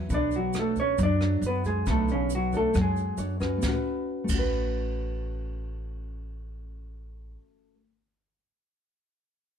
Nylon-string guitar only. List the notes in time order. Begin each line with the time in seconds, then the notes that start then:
0.11 B3 D4 A4 C#5
0.55 D4 A4 C#5
0.99 F#3
1.21 D4 A4 C#5
1.87 B3 D4 A4 C#5
2.53 D4 A4 C#5
2.73 F#3 D4 A4 C#5
3.17 D4 A4 C#5
3.40 C#4 F#4 B4
3.57 A3
3.63 C#4
3.68 F#4
3.73 B4
4.24 A3
4.29 C#4
4.34 F#4
4.39 B4